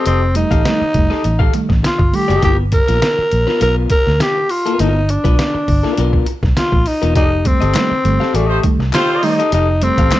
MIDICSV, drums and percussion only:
0, 0, Header, 1, 2, 480
1, 0, Start_track
1, 0, Tempo, 591716
1, 49, Time_signature, 4, 2, 24, 8
1, 8273, End_track
2, 0, Start_track
2, 0, Title_t, "Drums"
2, 45, Note_on_c, 9, 42, 92
2, 126, Note_off_c, 9, 42, 0
2, 284, Note_on_c, 9, 42, 77
2, 365, Note_off_c, 9, 42, 0
2, 415, Note_on_c, 9, 36, 98
2, 418, Note_on_c, 9, 42, 60
2, 496, Note_off_c, 9, 36, 0
2, 500, Note_off_c, 9, 42, 0
2, 531, Note_on_c, 9, 38, 106
2, 531, Note_on_c, 9, 42, 90
2, 612, Note_off_c, 9, 38, 0
2, 612, Note_off_c, 9, 42, 0
2, 764, Note_on_c, 9, 42, 57
2, 767, Note_on_c, 9, 36, 74
2, 845, Note_off_c, 9, 42, 0
2, 848, Note_off_c, 9, 36, 0
2, 898, Note_on_c, 9, 38, 36
2, 979, Note_off_c, 9, 38, 0
2, 1008, Note_on_c, 9, 42, 73
2, 1089, Note_off_c, 9, 42, 0
2, 1134, Note_on_c, 9, 36, 106
2, 1215, Note_off_c, 9, 36, 0
2, 1245, Note_on_c, 9, 42, 79
2, 1327, Note_off_c, 9, 42, 0
2, 1377, Note_on_c, 9, 36, 81
2, 1382, Note_on_c, 9, 38, 36
2, 1458, Note_off_c, 9, 36, 0
2, 1463, Note_off_c, 9, 38, 0
2, 1495, Note_on_c, 9, 38, 110
2, 1500, Note_on_c, 9, 42, 82
2, 1577, Note_off_c, 9, 38, 0
2, 1581, Note_off_c, 9, 42, 0
2, 1617, Note_on_c, 9, 36, 84
2, 1698, Note_off_c, 9, 36, 0
2, 1733, Note_on_c, 9, 46, 59
2, 1814, Note_off_c, 9, 46, 0
2, 1869, Note_on_c, 9, 42, 54
2, 1951, Note_off_c, 9, 42, 0
2, 1967, Note_on_c, 9, 42, 88
2, 1970, Note_on_c, 9, 36, 117
2, 2049, Note_off_c, 9, 42, 0
2, 2051, Note_off_c, 9, 36, 0
2, 2205, Note_on_c, 9, 42, 80
2, 2211, Note_on_c, 9, 36, 93
2, 2287, Note_off_c, 9, 42, 0
2, 2292, Note_off_c, 9, 36, 0
2, 2340, Note_on_c, 9, 42, 59
2, 2421, Note_off_c, 9, 42, 0
2, 2452, Note_on_c, 9, 38, 110
2, 2452, Note_on_c, 9, 42, 91
2, 2533, Note_off_c, 9, 38, 0
2, 2533, Note_off_c, 9, 42, 0
2, 2689, Note_on_c, 9, 42, 55
2, 2770, Note_off_c, 9, 42, 0
2, 2821, Note_on_c, 9, 38, 31
2, 2902, Note_off_c, 9, 38, 0
2, 2928, Note_on_c, 9, 42, 86
2, 3009, Note_off_c, 9, 42, 0
2, 3161, Note_on_c, 9, 42, 81
2, 3167, Note_on_c, 9, 36, 90
2, 3242, Note_off_c, 9, 42, 0
2, 3248, Note_off_c, 9, 36, 0
2, 3298, Note_on_c, 9, 38, 38
2, 3379, Note_off_c, 9, 38, 0
2, 3409, Note_on_c, 9, 38, 112
2, 3413, Note_on_c, 9, 42, 97
2, 3490, Note_off_c, 9, 38, 0
2, 3494, Note_off_c, 9, 42, 0
2, 3646, Note_on_c, 9, 46, 62
2, 3727, Note_off_c, 9, 46, 0
2, 3784, Note_on_c, 9, 42, 56
2, 3865, Note_off_c, 9, 42, 0
2, 3888, Note_on_c, 9, 42, 95
2, 3969, Note_off_c, 9, 42, 0
2, 4128, Note_on_c, 9, 42, 76
2, 4209, Note_off_c, 9, 42, 0
2, 4257, Note_on_c, 9, 36, 104
2, 4259, Note_on_c, 9, 42, 59
2, 4338, Note_off_c, 9, 36, 0
2, 4340, Note_off_c, 9, 42, 0
2, 4372, Note_on_c, 9, 38, 117
2, 4372, Note_on_c, 9, 42, 100
2, 4453, Note_off_c, 9, 38, 0
2, 4453, Note_off_c, 9, 42, 0
2, 4608, Note_on_c, 9, 36, 74
2, 4608, Note_on_c, 9, 46, 46
2, 4689, Note_off_c, 9, 36, 0
2, 4690, Note_off_c, 9, 46, 0
2, 4740, Note_on_c, 9, 38, 35
2, 4821, Note_off_c, 9, 38, 0
2, 4847, Note_on_c, 9, 42, 84
2, 4928, Note_off_c, 9, 42, 0
2, 4973, Note_on_c, 9, 36, 93
2, 5054, Note_off_c, 9, 36, 0
2, 5082, Note_on_c, 9, 42, 76
2, 5163, Note_off_c, 9, 42, 0
2, 5214, Note_on_c, 9, 36, 89
2, 5218, Note_on_c, 9, 38, 36
2, 5295, Note_off_c, 9, 36, 0
2, 5299, Note_off_c, 9, 38, 0
2, 5327, Note_on_c, 9, 38, 105
2, 5332, Note_on_c, 9, 42, 98
2, 5409, Note_off_c, 9, 38, 0
2, 5413, Note_off_c, 9, 42, 0
2, 5454, Note_on_c, 9, 36, 88
2, 5535, Note_off_c, 9, 36, 0
2, 5563, Note_on_c, 9, 46, 70
2, 5644, Note_off_c, 9, 46, 0
2, 5700, Note_on_c, 9, 42, 57
2, 5781, Note_off_c, 9, 42, 0
2, 5804, Note_on_c, 9, 42, 88
2, 5807, Note_on_c, 9, 36, 110
2, 5885, Note_off_c, 9, 42, 0
2, 5888, Note_off_c, 9, 36, 0
2, 6045, Note_on_c, 9, 42, 82
2, 6049, Note_on_c, 9, 36, 89
2, 6126, Note_off_c, 9, 42, 0
2, 6130, Note_off_c, 9, 36, 0
2, 6179, Note_on_c, 9, 42, 55
2, 6260, Note_off_c, 9, 42, 0
2, 6283, Note_on_c, 9, 39, 97
2, 6293, Note_on_c, 9, 38, 108
2, 6293, Note_on_c, 9, 42, 90
2, 6364, Note_off_c, 9, 39, 0
2, 6374, Note_off_c, 9, 38, 0
2, 6374, Note_off_c, 9, 42, 0
2, 6530, Note_on_c, 9, 42, 63
2, 6611, Note_off_c, 9, 42, 0
2, 6663, Note_on_c, 9, 38, 36
2, 6744, Note_off_c, 9, 38, 0
2, 6770, Note_on_c, 9, 42, 78
2, 6851, Note_off_c, 9, 42, 0
2, 7004, Note_on_c, 9, 42, 76
2, 7007, Note_on_c, 9, 36, 88
2, 7085, Note_off_c, 9, 42, 0
2, 7088, Note_off_c, 9, 36, 0
2, 7141, Note_on_c, 9, 38, 35
2, 7222, Note_off_c, 9, 38, 0
2, 7245, Note_on_c, 9, 39, 92
2, 7257, Note_on_c, 9, 38, 108
2, 7261, Note_on_c, 9, 42, 80
2, 7326, Note_off_c, 9, 39, 0
2, 7338, Note_off_c, 9, 38, 0
2, 7342, Note_off_c, 9, 42, 0
2, 7486, Note_on_c, 9, 46, 67
2, 7567, Note_off_c, 9, 46, 0
2, 7623, Note_on_c, 9, 42, 55
2, 7704, Note_off_c, 9, 42, 0
2, 7725, Note_on_c, 9, 42, 95
2, 7806, Note_off_c, 9, 42, 0
2, 7962, Note_on_c, 9, 42, 77
2, 8043, Note_off_c, 9, 42, 0
2, 8094, Note_on_c, 9, 36, 94
2, 8096, Note_on_c, 9, 42, 63
2, 8175, Note_off_c, 9, 36, 0
2, 8177, Note_off_c, 9, 42, 0
2, 8205, Note_on_c, 9, 39, 109
2, 8207, Note_on_c, 9, 38, 121
2, 8208, Note_on_c, 9, 42, 85
2, 8273, Note_off_c, 9, 38, 0
2, 8273, Note_off_c, 9, 39, 0
2, 8273, Note_off_c, 9, 42, 0
2, 8273, End_track
0, 0, End_of_file